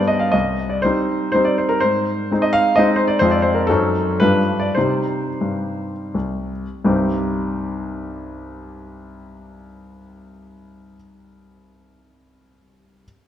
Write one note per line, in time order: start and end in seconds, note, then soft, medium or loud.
0.00 0.32 G2 soft
0.00 0.30 G3 soft
0.00 0.30 B3 soft
0.00 0.30 D4 soft
0.00 0.36 D5 medium
0.07 0.21 D#5 medium
0.20 0.33 F5 soft
0.32 0.82 C2 soft
0.32 0.70 D#5 medium
0.69 0.83 D5 soft
0.82 1.31 G3 soft
0.82 1.32 C4 soft
0.82 1.32 D#4 soft
0.82 1.30 C5 medium
1.32 1.78 G3 soft
1.32 1.78 C4 soft
1.32 1.78 D#4 soft
1.32 1.46 C5 medium
1.45 1.58 D5 medium
1.58 1.70 C5 medium
1.69 1.81 A#4 medium
1.80 2.31 G#2 soft
1.80 2.43 C5 medium
2.31 2.74 G#3 soft
2.31 2.74 C4 soft
2.31 2.75 D#4 soft
2.42 2.54 D#5 medium
2.53 2.77 F5 medium
2.76 3.17 G#3 medium
2.76 3.17 C4 soft
2.76 3.18 D#4 medium
2.76 2.99 D#5 medium
2.96 3.09 C5 medium
3.08 3.20 D5 medium
3.19 3.67 F2 medium
3.19 3.65 G#3 soft
3.19 3.65 C4 soft
3.19 3.65 F4 soft
3.19 3.31 C5 medium
3.31 3.43 D5 medium
3.42 3.55 C5 medium
3.54 3.68 A#4 medium
3.67 4.20 F#2 medium
3.67 4.17 F#3 soft
3.67 4.17 C4 soft
3.67 4.20 A4 medium
3.71 4.18 D#4 soft
4.20 4.74 G2 soft
4.20 4.72 F3 soft
4.20 4.72 G3 soft
4.20 4.73 D4 soft
4.20 4.61 B4 medium
4.59 4.75 D5 medium
4.75 5.23 C3 soft
4.75 5.30 G3 soft
4.75 5.29 D#4 soft
4.75 6.50 C5 medium
5.41 5.92 G2 soft
6.14 6.65 C2 soft
6.84 10.94 C2 soft
6.84 10.94 G2 soft
6.84 10.95 G3 soft
6.84 10.95 C4 soft
6.84 10.95 D#4 soft
6.84 10.95 G4 soft